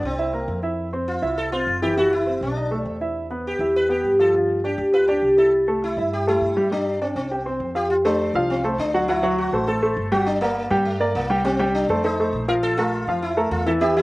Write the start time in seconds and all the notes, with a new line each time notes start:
Already playing: D4 D5
0.03 C2 C4
0.19 E4 E5
0.33 A#3 A#4
0.48 F2
0.63 E4 E5
0.93 C4 C5
1.08 F4
1.22 C2 E4 E5
1.38 A4
1.52 C4 F4 C5
1.67 F#1
1.82 E3 E4 G4
1.97 E3 E4 F#4
2.13 E4
2.27 C4 C5
2.41 B1 D4
2.57 D#4 D#5
2.71 A3 A4
2.84 E2 C4
3.01 E4 E5
3.31 B3 B4
3.47 G4
3.59 E2 E4 E5
3.76 B4
3.89 B3 G4 B4
4.04 G2
4.19 F3 F4 A4
4.34 F3 F4
4.64 D4 G4 D5
4.78 D2
4.94 F4 B4 F5
5.08 D4 G4 D5
5.22 C2
5.38 E4 A4 E5
5.68 A3 A4
5.84 E4
5.97 G2 E4 E5
6.13 G4
6.27 A3 E4 A4
6.41 G2
6.57 G3 G4
6.72 G3 D4 G4
7.01 C4 D4 D5
7.16 C2 C4
7.31 G4 G5
7.46 C4 C5
7.60 F2
7.75 F4 G4 F5
7.90 F4
8.05 A3 D4 A4 C5
8.34 C2 F3 F4 F5
8.50 C4
8.64 A3 A4 C5
8.78 D2 D4
8.94 F#3 F#4 F#5
9.08 F#3 E4 F#4 F#5
9.23 F#3 F#4 F#5
9.38 F#4
9.52 A1 A3 A4 C5
9.67 A3 A4 C5
9.82 A3 A4 C5
9.97 G1
10.12 G3 F#4 G4 G5
10.26 D4
10.41 A#3 A#4 D5
10.70 G2 G3 G4 G5
10.85 A3
11.00 A#3 A#4 D5
11.15 C2 A#3
11.30 G3 G4 G5
11.45 G3 C4 G4 G5
11.60 G3 G4 G5
11.75 D4
11.89 F2 A3 A4 C5
12.04 A3 D#4 A4 C5
12.20 A3 A4 C5
12.33 A#1
12.48 F3 F4 A#4 F5
12.63 A4
12.78 A3 F4 A4 A#4
13.07 F2 F3 F4 F5
13.22 E4
13.37 A3 A4 A#4
13.51 E2 F4
13.66 E3 E4 A4 E5
13.81 E3 E4 G4 E5
13.96 E3 E4 E5